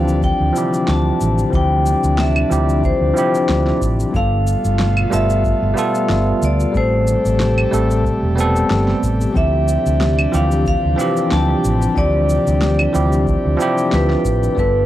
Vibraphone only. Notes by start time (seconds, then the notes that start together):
Already playing: F5
0.24 G5
0.89 A5
1.55 G5
2.19 E5
2.85 C5
4.16 F5
5.14 E5
6.45 D5
6.77 C5
9.37 E5
10.35 F5
10.68 F5
11.32 A5
11.98 D5
13.93 B4
14.59 B4